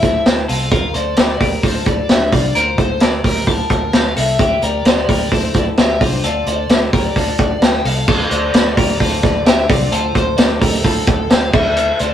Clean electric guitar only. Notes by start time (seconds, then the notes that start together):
Already playing: E4 A4
0.48 F4 A4
0.71 F4 A#4
0.94 A4 C5
1.18 A#4 D5
1.40 G4 A#4
1.64 F4 A4
2.10 D4 G4
2.33 D4 F4
2.55 F4 A#4
2.79 A4 C5
3.01 A#4 D5
3.25 G4 A#4
3.48 F4 A5
4.17 F4 A4
4.40 E4 G4
4.63 G4 A#4
4.86 G4 C5
5.09 G4 A#4
5.32 E4 A4
5.78 E4 G4
6.01 D4 F4
6.24 F4 A4
6.47 A4 C5
6.70 A4 D5
6.94 G4 A#4
7.17 F4 A4
7.85 F4 A4
8.08 F4 A4
8.31 A4 C5
8.54 A4 D5
8.77 G4 A#4
9.00 F4 A4
9.46 D4 G4
9.69 D4 F4
9.92 F4 A4
10.15 A4 C5
10.38 A4 D5
10.61 G4 A#4
10.84 F4 A4
11.54 E4 A4
11.77 E4 A4
12.00 A4 C5